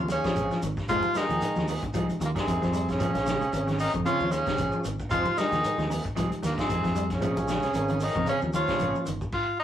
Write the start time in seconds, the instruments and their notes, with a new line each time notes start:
Already playing: fingered electric bass D#2
0.08 trombone section C#3, clean electric guitar D#3, tenor saxophone C#4, muted clean electric guitar stroke, closed hi-hat, high conga, shekere
0.12 trumpet G#4
0.24 clean electric guitar F3 C4 C#4 G#4, reed electric piano C#4 G#4 C5, kick, snare, closed hi-hat, shekere
0.35 fingered electric bass A#1, clean electric guitar F3 C4 C#4 G#4, kick, closed hi-hat, high conga, shekere
0.51 clean electric guitar F3, muted clean electric guitar stroke, snare, shekere
0.62 fingered electric bass G#1, clean electric guitar D#3, muted clean electric guitar stroke, closed hi-hat, shekere
0.77 kick, snare, shekere
0.88 fingered electric bass F1, trombone section F3, reed electric piano G#3 D#4 G4, clean electric guitar G#3 C4 D#4 G#4, tenor saxophone F4, trumpet C5, kick, closed hi-hat, high conga, low conga, shekere
1.03 muted clean electric guitar stroke, high conga, shekere
1.14 trombone section D#3, clean electric guitar G3, tenor saxophone D#4, trumpet G#4, muted fingered electric bass stroke, snare, closed hi-hat, shekere
1.29 fingered electric bass D#2, clean electric guitar F3 G#4, muted clean electric guitar stroke, closed hi-hat, low conga, shekere
1.41 reed electric piano G#3 D#4 F4, muted clean electric guitar stroke, closed hi-hat, shekere
1.56 fingered electric bass D#2, clean electric guitar F3, muted clean electric guitar stroke, snare, high conga, shekere
1.68 clean electric guitar D#3 C4 D#4 G#4, open hi-hat, shekere
1.83 muted clean electric guitar stroke, kick, closed hi-hat, low conga, shekere
1.94 fingered electric bass C2, clean electric guitar F3 C4 D#4 G#4, reed electric piano G#3 D#4 G4, closed hi-hat, shekere
2.09 muted clean electric guitar stroke, closed hi-hat, high conga, shekere
2.20 fingered electric bass D#2, trombone section A#2, clean electric guitar D#3, muted clean electric guitar stroke, closed hi-hat, high conga, shekere
2.24 tenor saxophone A#3, trumpet F4
2.35 trombone section C3, reed electric piano G#3 D#4 A#4, clean electric guitar D#4 G#4, muted fingered electric bass stroke, kick, snare, closed hi-hat, shekere
2.39 tenor saxophone C4, trumpet G#4
2.47 fingered electric bass F2, clean electric guitar C4 D#4 G#4, kick, closed hi-hat, high conga, shekere
2.61 fingered electric bass F2, clean electric guitar F3, muted clean electric guitar stroke, kick, snare, closed hi-hat, shekere
2.73 clean electric guitar G3, muted clean electric guitar stroke, closed hi-hat, shekere
2.88 trombone section C#3, tenor saxophone C#4, trumpet G#4, kick, snare, closed hi-hat, shekere
2.99 fingered electric bass A#1, clean electric guitar F3 C4 C#4 G#4, reed electric piano C#4 G#4 C5, kick, closed hi-hat, high conga, low conga, shekere
3.13 fingered electric bass A#1, muted clean electric guitar stroke, snare, closed hi-hat, high conga, shekere
3.26 clean electric guitar C#3, snare, closed hi-hat, shekere
3.40 clean electric guitar C4 C#4 G#4, closed hi-hat, low conga, shekere
3.53 fingered electric bass G#1, reed electric piano C4 C#4 G#4, muted clean electric guitar stroke, closed hi-hat, high conga, shekere
3.67 clean electric guitar D#3, muted clean electric guitar stroke, snare, closed hi-hat, high conga, shekere
3.78 trombone section D#3, clean electric guitar F3 C4 C#4 G#4, tenor saxophone D#4, trumpet A#4, open hi-hat, shekere
3.93 fingered electric bass F2, clean electric guitar C#3, muted clean electric guitar stroke, kick, closed hi-hat, shekere
4.05 clean electric guitar C#3 F3 C#4 G#4, trombone section F3, reed electric piano C4 C#4 G#4, tenor saxophone F4, trumpet C#5, muted clean electric guitar stroke, closed hi-hat, high conga, shekere
4.20 fingered electric bass D#2, clean electric guitar F3, muted clean electric guitar stroke, high conga, shekere
4.31 trombone section C#3, clean electric guitar D#3, tenor saxophone C#4, trumpet G#4, muted clean electric guitar stroke, closed hi-hat, high conga, shekere
4.44 clean electric guitar C#3 C4 C#4 G#4, reed electric piano C#4 C5 G5, kick, snare, closed hi-hat, shekere
4.55 fingered electric bass A#1, clean electric guitar F3 C4 C#4 G#4, kick, closed hi-hat, high conga, shekere
4.71 clean electric guitar F3, muted clean electric guitar stroke, shekere
4.84 fingered electric bass G#1, clean electric guitar D#3, muted clean electric guitar stroke, closed hi-hat, shekere
4.99 kick, shekere
5.09 fingered electric bass F1, trombone section F3, clean electric guitar F3 C4 D#4 G#4, reed electric piano G#3 D#4 G4, tenor saxophone F4, trumpet C5, kick, closed hi-hat, high conga, low conga, shekere
5.24 muted clean electric guitar stroke, high conga, shekere
5.37 trombone section D#3, clean electric guitar G3, tenor saxophone D#4, trumpet G#4, muted fingered electric bass stroke, snare, closed hi-hat, shekere
5.52 fingered electric bass D#2, clean electric guitar F3 D#4 G#4, snare, closed hi-hat, low conga, shekere
5.64 reed electric piano G#3 D#4 G4, muted clean electric guitar stroke, closed hi-hat, high conga, shekere
5.77 fingered electric bass D#2, clean electric guitar F3, muted clean electric guitar stroke, snare, high conga, shekere
5.89 clean electric guitar D#3 C4 D#4 G#4, open hi-hat, high conga, shekere
6.04 muted clean electric guitar stroke, kick, closed hi-hat, shekere
6.15 fingered electric bass C2, clean electric guitar F3 C4 D#4 G#4, reed electric piano G#3 D#4 G4, closed hi-hat, shekere
6.31 muted clean electric guitar stroke, closed hi-hat, high conga, shekere
6.42 fingered electric bass D#2, trombone section A#2, clean electric guitar D#3, tenor saxophone A#3, muted clean electric guitar stroke, snare, closed hi-hat, high conga, shekere
6.49 trumpet F4
6.57 trombone section C3, reed electric piano G#3 D#4 F4, tenor saxophone C4, clean electric guitar D#4 G#4, trumpet G#4, kick, snare, closed hi-hat, shekere
6.68 fingered electric bass F2, clean electric guitar C4 D#4 G#4, kick, closed hi-hat, high conga, shekere
6.83 fingered electric bass F2, clean electric guitar F3, muted clean electric guitar stroke, kick, snare, closed hi-hat, shekere
6.96 clean electric guitar G3, muted clean electric guitar stroke, closed hi-hat, shekere
7.10 trombone section C#3, trumpet G#4, kick, snare, closed hi-hat, shekere
7.14 tenor saxophone C#4
7.21 fingered electric bass A#1, clean electric guitar F3 C4 C#4 G#4, reed electric piano C#4 G#4 C5, kick, closed hi-hat, high conga, low conga, shekere
7.36 fingered electric bass A#1, muted clean electric guitar stroke, closed hi-hat, high conga, shekere
7.48 clean electric guitar C#3, snare, closed hi-hat, shekere
7.62 clean electric guitar C4 C#4 G#4, snare, closed hi-hat, low conga, shekere
7.74 fingered electric bass G#1, reed electric piano C4 C#4 A#4, muted clean electric guitar stroke, closed hi-hat, shekere
7.88 clean electric guitar D#3, muted clean electric guitar stroke, closed hi-hat, high conga, shekere
8.00 trombone section D#3, clean electric guitar F3 C4 C#4 G#4, tenor saxophone D#4, open hi-hat, shekere
8.04 trumpet A#4
8.15 fingered electric bass F2, clean electric guitar C#3, muted clean electric guitar stroke, kick, closed hi-hat, low conga, shekere
8.25 trombone section C#3, clean electric guitar C#3 F3 C4 C#4 G#4, reed electric piano C4 C#4 G#4, tenor saxophone C#4, closed hi-hat, high conga, shekere
8.30 trumpet G#4
8.42 fingered electric bass D#2, clean electric guitar F3, muted clean electric guitar stroke, shekere
8.53 clean electric guitar D#3, trombone section F3, tenor saxophone F4, trumpet C#5, muted clean electric guitar stroke, closed hi-hat, high conga, shekere
8.68 clean electric guitar C#3 C4 C#4 G#4, reed electric piano A#3 C#4 G#4, kick, snare, closed hi-hat, shekere
8.79 fingered electric bass A#1, clean electric guitar F3 C4 C#4 G#4, kick, closed hi-hat, high conga, shekere
8.94 clean electric guitar F3, muted clean electric guitar stroke, shekere
9.06 fingered electric bass G1, clean electric guitar D#3, muted clean electric guitar stroke, closed hi-hat, shekere
9.21 kick, shekere
9.32 tenor saxophone F4, kick, crash
9.60 tenor saxophone D#4